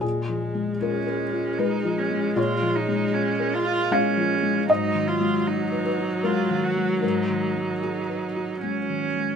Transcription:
<<
  \new Staff \with { instrumentName = "Cello" } { \time 3/4 \key gis \dorian \tempo 4 = 77 r4 cis'4 dis'8 cis'8 | eis'8 dis'8 cis'8 eis'8 cis'4 | dis'8 eis'8 dis'4 eis'8 fis'8 | dis'2 cis'4 | }
  \new Staff \with { instrumentName = "Felt piano" } { \time 3/4 \key gis \dorian gis'4 ais'4 b'4 | cis''2 eis''4 | dis''4. b'8 ais'4 | ais'4 gis'4 r4 | }
  \new Staff \with { instrumentName = "Felt piano" } { \clef bass \time 3/4 \key gis \dorian \tuplet 3/2 { ais,8 eis8 gis8 eis'8 ais'8 eis'8 gis8 eis8 gis8 } | \tuplet 3/2 { ais,8 eis8 gis8 eis'8 ais'8 eis'8 gis8 eis8 gis8 } | \tuplet 3/2 { gis,8 dis8 gis8 fis'8 b'8 fis'8 gis8 dis8 gis8 } | \tuplet 3/2 { gis,8 dis8 gis8 fis'8 b'8 fis'8 gis8 dis8 gis8 } | }
  \new Staff \with { instrumentName = "Viola" } { \clef bass \time 3/4 \key gis \dorian gis2.~ | gis2. | fis2.~ | fis2~ fis8. r16 | }
>>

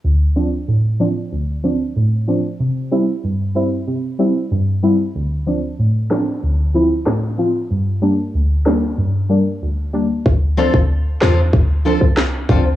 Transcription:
<<
  \new Staff \with { instrumentName = "Steel-string acoustic guitar" } { \time 4/4 \key d \minor \tempo 4 = 94 r1 | r1 | r1 | r1 |
r8 <c' f' a' c''>8 r8 <c' f' a' c''>8 r8 <c' f' a' c''>8 r8 <c' f' a' c''>8 | }
  \new Staff \with { instrumentName = "Synth stab" } { \time 4/4 \key d \minor << { r8 <f c' d'>8 r8 <f c' d'>8 r8 <f c' d'>8 r8 <f c' d'>8 | r8 <g c' e'>8 r8 <g c' e'>8 r8 <g c' e'>8 r8 <g c' e'>8 | r8 <f c' d'>8 r8 <f c' d'>8 r8 <f c' e'>8 r8 <f c' f'>8 | r8 <g bes d'>8 r8 <g bes d'>8 r8 <g bes d'>8 r8 <g bes d'>8 |
r8 <f c' d'>8 r8 <f c' f'>8 r8 <f c' d'>8 r8 <f c' d'>8 | } \\ { d,4 a,4 d,4 a,4 | c4 g,4 c4 g,4 | d,4 a,4 d,4 a,4 | g,4 d,4 g,4 d,4 |
r1 | } >> }
  \new Staff \with { instrumentName = "808-style bass" } { \clef bass \time 4/4 \key d \minor r1 | r1 | r1 | r1 |
d,8. d,8. e,8 d,8. c,8. d,8 | }
  \new DrumStaff \with { instrumentName = "Drums" } \drummode { \time 4/4 r4 r4 r4 r4 | r4 r4 r4 r4 | r4 r8 <ss sn>8 r4 <ss sn>4 | r4 r8 <ss sn>8 r4 r4 |
bd8. bd16 r8 <ss sn>8 bd4 <ss sn>8 bd8 | }
>>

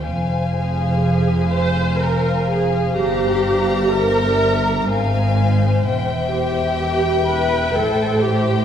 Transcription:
<<
  \new Staff \with { instrumentName = "Violin section" } { \time 3/4 \key f \dorian \tempo 4 = 62 aes''2. | bes''2 aes''4 | \key e \minor g''2. | }
  \new Staff \with { instrumentName = "Violin section" } { \time 3/4 \key f \dorian << { f''2.~ | f''4 e''4 f''4 | \key e \minor e''2. | } \\ { c''2.~ | c''2 c''4~ | c''4 b'4 c''4 | } >> }
  \new Staff \with { instrumentName = "Viola section" } { \time 3/4 \key f \dorian r8 aes'4 c''8 bes'8 aes'8 | g'4 bes'4. r8 | \key e \minor r8 g'4 b'8 a'8 g'8 | }
  \new Staff \with { instrumentName = "Cello section" } { \clef bass \time 3/4 \key f \dorian f,2. | g,2 aes,4 | \key e \minor e,2 a,4 | }
  \new Staff \with { instrumentName = "Double bass section" } { \clef bass \time 3/4 \key f \dorian f,,2. | g,,2 aes,,4 | \key e \minor e,,2 a,,4 | }
>>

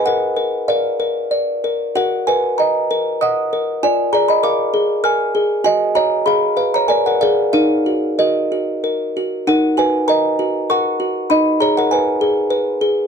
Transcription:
\new Staff \with { instrumentName = "Music box" } { \time 3/4 \key ees \minor \tempo 4 = 97 << { <bes' ges''>4 <bes' f''>4. r8 | <bes' ges''>8 <ces'' aes''>8 <ees'' bes''>4 <ges'' ees'''>4 | <d'' aes''>8 <d'' bes''>16 <ees'' ces'''>16 <f'' d'''>4 <aes'' f'''>4 | <ees'' aes''>8 <des'' bes''>8 <f'' ces'''>8. <des'' bes''>16 <d'' aes''>16 <bes' ges''>16 <aes' f''>8 |
<bes' f''>4 <ges' ees''>4. r8 | <bes' ges''>8 <ces'' aes''>8 <ees'' bes''>4 <ges'' des'''>4 | <ees'' ces'''>8 <des'' bes''>16 <bes' ges''>16 <ces'' aes''>4. r8 | } \\ { r8 bes'8 d''8 bes'8 d''8 bes'8 | ges'8 bes'4 bes'8 ees''8 bes'8 | f'8 aes'8 bes'8 aes'8 bes'8 aes'8 | ges'8 <ges' ees''>8 aes'8 <ces'' f''>8 bes'8 <bes' d''>8 |
ees'8 ges'8 bes'8 ges'8 bes'8 ges'8 | ees'8 ges'8 bes'8 ges'8 bes'8 ges'8 | ees'8 aes'4 aes'8 ces''8 aes'8 | } >> }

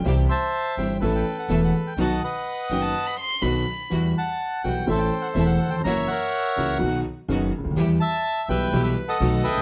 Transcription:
<<
  \new Staff \with { instrumentName = "Violin" } { \time 4/4 \key e \minor \tempo 4 = 125 g''16 r2. r8. | r4. g''16 a''8 b''16 c'''8 b''4~ | b''16 r2. r8. | r1 |
r1 | }
  \new Staff \with { instrumentName = "Bandoneon" } { \time 4/4 \key e \minor << { r8 a''4 g''8 e''16 g''8 fis''16 e''16 fis''8 g''16 | a''8 fis''2 r4. | r8 a''4 g''8 e''16 g''8 fis''16 e''16 fis''8 g''16 | ais''8 fis''2 r4. |
r8 a''4 g''8. e''8 fis''8. g''8 | } \\ { r8 <c'' e''>4. <a' b'>2 | <dis'' fis''>8 <b' dis''>2 r4. | r8 fis''4. <a' c''>2 | <cis'' e''>8 <ais' cis''>4. r2 |
r8 e''4 <b' e''>4~ <b' e''>16 <a' dis''>8. <b' e''>8 | } >> }
  \new Staff \with { instrumentName = "String section" } { \time 4/4 \key e \minor <c' e' g'>8 r4 <c' e' g'>8 <b e' a'>8 r8 <b e' a'>8 r8 | <b dis' fis'>8 r4 <b dis' fis'>8 r4 <b dis' fis'>8 r8 | <g e' fis'>8 r4 <g e' fis'>8 <c' e' a'>8 r8 <c' e' a'>8 r8 | <ais e' fis'>8 r4 <ais e' fis'>8 <b dis' fis'>8 r8 <b dis' fis'>8 r8 |
<b e' g'>8 r4 <b e' g'>8 <b e' g'>8 r8 <b dis' a'>8 r8 | }
  \new Staff \with { instrumentName = "Grand piano" } { \clef bass \time 4/4 \key e \minor <c, c e g c' g'>8 r4 <g,, g, e g c' g'>8 <a,, a, e a b a'>8 r8 <e,, e, e a b a'>8 r8 | <b,, b, dis fis b fis'>8 r4 <fis,, fis, dis fis b fis'>8 r4 <b,, b, dis fis b fis'>8 r8 | <e, e g b fis'>8 r4 <b,, b, e g b fis'>8 <a,, a, e a c' a'>8 r8 <e,, e, e a c' a'>8 r32 dis,32 e,32 f,32 | <fis, e fis ais cis' fis'>8 r4 <cis, cis e ais cis' fis'>8 <b,, b, dis fis b fis'>8 r8 <fis,, fis, dis fis b fis'>8 r32 cis,32 d,32 dis,32 |
<e, e g b g'>8 r4 <b,, b, e g b g'>8 <b,, b, e g b g'>8 r8 <b,, b, dis a b fis'>8 r32 cis,32 d,32 r32 | }
  \new Staff \with { instrumentName = "Upright bass" } { \clef bass \time 4/4 \key e \minor c,16. r4 r32 g,,16. r32 a,,16. r8 r32 e,,16. r8 r32 | b,,16. r4 r32 fis,,16. r4 r32 b,,16. r8 r32 | e,16. r4 r32 b,,16. r32 a,,16. r8 r32 e,,16. r8 r32 | fis,,16. r4 r32 cis,16. r32 b,,16. r8 r32 fis,,16. r16 cis,32 d,32 dis,32 |
e,16. r4 r32 b,,16. r32 b,,16. r8 r32 b,,16. r16 cis,32 d,32 r32 | }
>>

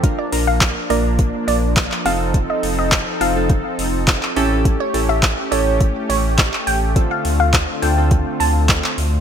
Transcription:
<<
  \new Staff \with { instrumentName = "Synth pluck" } { \time 4/4 \key bes \major \tempo 4 = 104 r16 d''16 r16 f''16 r8 d''8. r16 d''16 r8. f''16 r16 | r16 ees''16 r16 ees''16 r8 f''4 r4. | r16 cis''16 r16 e''16 r8 cis''8. r16 cis''16 r8. g''16 r16 | r16 f''16 r16 f''16 r8 g''8. r16 a''16 r4 r16 | }
  \new Staff \with { instrumentName = "Synth keys" } { \time 4/4 \key bes \major <bes d' f' bes'>16 r16 <bes d' f' bes'>8. r16 <bes d' f' bes'>4. r8 <c' ees' f' a'>8~ | <c' ees' f' a'>4 r8 <c' ees' f' a'>16 <c' ees' f' a'>4. r16 <cis' e' g' a'>8~ | <cis' e' g' a'>16 r16 <cis' e' g' a'>8. r16 <cis' e' g' a'>4. r4 | <c' d' f' a'>4 r8 <c' d' f' a'>16 <c' d' f' a'>4. r8. | }
  \new Staff \with { instrumentName = "Supersaw synth" } { \time 4/4 \key bes \major << { bes2.~ bes8 <ees' a'>8~ | <ees' a'>2.~ <ees' a'>8 <cis' g'>8~ | <cis' g'>1 | <d c' f'>1 | } \\ { f2.~ f8 c'8~ | c'2.~ c'8 a8~ | a1~ | a1 | } >> }
  \new Staff \with { instrumentName = "Sub bass" } { \clef bass \time 4/4 \key bes \major r8 bes,,4 bes,,4 bes,,4 f,,8~ | f,,8 f,,4 f,,4 f,,4 a,,8~ | a,,8 a,,4 a,,4 a,,4 a,,8~ | a,,8 d,4 d,4 d,4 d,8 | }
  \new DrumStaff \with { instrumentName = "Drums" } \drummode { \time 4/4 <hh bd>8 hho8 <hc hh bd sn>8 hho8 <hh bd>8 hho8 <hc hh bd sn>16 hc16 hho8 | <hh bd>8 hho8 <hc hh bd sn>8 hho8 <hh bd>8 hho8 <hc hh bd sn>16 hc16 hho8 | <hh bd>8 hho8 <hc hh bd sn>8 hho8 <hh bd>8 hho8 <hc hh bd sn>16 hc16 hho8 | <hh bd>8 hho8 <hc hh bd sn>8 hho8 <hh bd>8 hho8 <hc hh bd sn>16 hc16 hho8 | }
>>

